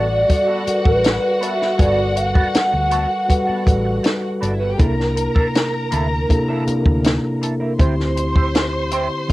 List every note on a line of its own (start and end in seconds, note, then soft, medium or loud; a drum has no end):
0.00 0.23 A1 medium
0.00 0.29 G3 medium
0.00 0.30 F#4 medium
0.00 4.31 F#4 medium
0.00 0.30 A4 medium
0.00 0.75 B4 medium
0.00 0.85 D5 medium
0.00 4.31 F#5 medium
0.29 0.55 G3 medium
0.29 0.55 F#4 medium
0.29 0.55 A4 medium
0.29 0.56 D5 medium
0.29 muted clean electric guitar stroke soft
0.29 kick medium
0.29 closed hi-hat medium
0.47 0.63 B3 medium
0.47 0.63 F#4 medium
0.47 0.62 A4 medium
0.66 1.44 G3 medium
0.66 1.44 F#4 medium
0.66 1.45 A4 medium
0.66 0.74 A#4 soft
0.66 muted fingered electric bass stroke soft
0.66 closed hi-hat medium
0.75 1.48 B4 medium
0.85 1.17 A1 medium
0.85 1.44 B4 medium
0.85 muted clean electric guitar stroke soft
0.85 kick medium
1.04 muted clean electric guitar stroke soft
1.04 snare medium
1.04 closed hi-hat medium
1.23 muted clean electric guitar stroke soft
1.41 1.53 B3 medium
1.41 1.53 F#4 soft
1.41 1.54 A4 medium
1.41 1.80 E5 medium
1.41 closed hi-hat medium
1.60 1.73 B3 soft
1.60 1.72 F#4 soft
1.60 1.72 B4 medium
1.60 snare soft
1.78 2.42 G1 loud
1.78 2.82 G3 medium
1.78 1.99 B3 medium
1.78 2.82 F#4 medium
1.78 1.99 F#4 medium
1.78 2.82 A4 medium
1.78 2.00 A4 medium
1.78 2.83 B4 medium
1.78 2.15 D5 medium
1.78 kick loud
1.78 closed hi-hat medium
2.16 4.38 F#5 loud
2.16 muted clean electric guitar stroke soft
2.16 closed hi-hat medium
2.34 2.47 B3 soft
2.34 2.47 F#4 soft
2.34 2.46 A4 soft
2.34 kick medium
2.54 muted fingered electric bass stroke soft
2.54 snare medium
2.54 closed hi-hat medium
2.72 3.05 D2 medium
2.72 muted clean electric guitar stroke soft
2.91 3.06 B3 medium
2.91 3.07 F#4 medium
2.91 3.07 A4 medium
2.91 closed hi-hat medium
3.10 muted clean electric guitar stroke soft
3.28 3.55 G3 medium
3.28 3.55 F#4 medium
3.28 3.55 A4 medium
3.28 3.55 B4 medium
3.28 muted clean electric guitar stroke soft
3.28 kick medium
3.28 closed hi-hat medium
3.47 3.63 B3 medium
3.47 3.63 F#4 medium
3.47 3.62 A4 medium
3.47 muted fingered electric bass stroke soft
3.65 3.98 A1 medium
3.65 4.43 G3 medium
3.65 4.43 F#4 medium
3.65 4.44 A4 medium
3.65 4.44 B4 medium
3.65 kick medium
3.65 closed hi-hat medium
3.85 muted clean electric guitar stroke soft
4.03 muted clean electric guitar stroke soft
4.03 snare medium
4.03 closed hi-hat medium
4.22 muted clean electric guitar stroke soft
4.41 4.73 G1 medium
4.41 4.53 B3 soft
4.41 4.51 D4 soft
4.41 4.53 F#4 soft
4.41 4.53 A4 soft
4.41 4.51 D5 medium
4.41 closed hi-hat medium
4.51 4.61 E4 medium
4.51 4.61 E5 medium
4.60 4.72 B3 soft
4.60 4.72 F#4 soft
4.60 4.70 F#4 medium
4.60 4.72 B4 soft
4.60 4.70 F#5 medium
4.70 4.79 G4 medium
4.70 4.79 G5 medium
4.78 5.26 C2 medium
4.78 5.82 C3 medium
4.78 4.93 A#3 medium
4.78 5.82 A#3 medium
4.78 5.82 D4 medium
4.78 4.94 E4 medium
4.78 5.82 E4 medium
4.78 4.86 G#4 medium
4.78 4.94 A4 medium
4.78 7.38 A#4 medium
4.78 7.38 A#5 medium
4.78 kick loud
4.78 closed hi-hat medium
4.86 5.86 A#4 medium
5.00 snare soft
5.16 muted clean electric guitar stroke soft
5.16 closed hi-hat medium
5.35 5.48 A#3 soft
5.35 5.47 E4 soft
5.35 5.47 A4 soft
5.35 kick medium
5.55 snare medium
5.55 closed hi-hat medium
5.73 muted clean electric guitar stroke soft
5.91 6.23 D2 medium
5.91 6.06 A#3 medium
5.91 6.07 E4 medium
5.91 6.07 A4 medium
5.91 closed hi-hat medium
6.12 muted clean electric guitar stroke soft
6.29 6.55 C3 medium
6.29 6.55 A#3 medium
6.29 6.55 D4 medium
6.29 6.55 E4 medium
6.29 6.56 A4 medium
6.29 muted clean electric guitar stroke soft
6.29 kick medium
6.29 closed hi-hat medium
6.48 6.64 A#3 medium
6.48 6.63 E4 medium
6.48 6.63 A4 medium
6.66 7.44 C3 medium
6.66 7.44 A#3 medium
6.66 7.44 D4 medium
6.66 7.44 E4 medium
6.66 7.44 A#4 medium
6.66 muted clean electric guitar stroke soft
6.66 muted fingered electric bass stroke soft
6.66 closed hi-hat medium
6.86 7.17 D2 medium
6.86 muted clean electric guitar stroke soft
6.86 kick medium
7.04 muted clean electric guitar stroke soft
7.04 snare loud
7.04 closed hi-hat medium
7.23 muted clean electric guitar stroke soft
7.41 7.53 A#3 soft
7.41 7.54 E4 soft
7.41 7.54 A4 medium
7.41 closed hi-hat medium
7.60 7.73 A#3 soft
7.60 7.72 E4 soft
7.60 7.72 A#4 medium
7.78 9.07 D2 loud
7.78 8.82 D3 medium
7.78 8.82 C4 medium
7.78 7.94 E4 medium
7.78 8.83 E4 medium
7.78 7.94 G4 medium
7.78 8.83 G4 medium
7.78 9.32 C5 medium
7.78 7.95 C5 medium
7.78 9.32 C6 medium
7.78 kick loud
7.78 closed hi-hat medium
8.00 snare soft
8.16 muted clean electric guitar stroke soft
8.16 closed hi-hat medium
8.35 8.48 E4 soft
8.35 8.48 G4 soft
8.35 8.47 C5 soft
8.35 kick medium
8.55 snare medium
8.55 closed hi-hat medium
8.73 muted clean electric guitar stroke soft
8.91 9.06 E4 medium
8.91 9.07 G4 medium
8.91 9.07 C5 medium
8.91 closed hi-hat medium
9.29 9.32 D3 medium
9.29 9.32 C4 medium
9.29 muted clean electric guitar stroke soft